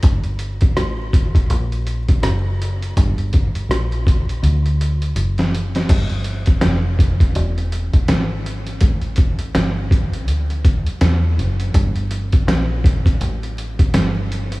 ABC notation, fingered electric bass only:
X:1
M:4/4
L:1/16
Q:"Swing 16ths" 1/4=82
K:Gdor
V:1 name="Fingered electric bass" clef=bass
G,,,4 A,,,4 B,,,3 z ^F,,,4 | G,,,4 B,,,4 D,,4 ^F,,,4 | G,,,4 F,,,4 E,,,3 z ^G,,,4 | A,,,4 G,,,4 D,,3 z E,,2 ^F,,,2 |
G,,,4 B,,,4 A,,,3 z G,,,4 |]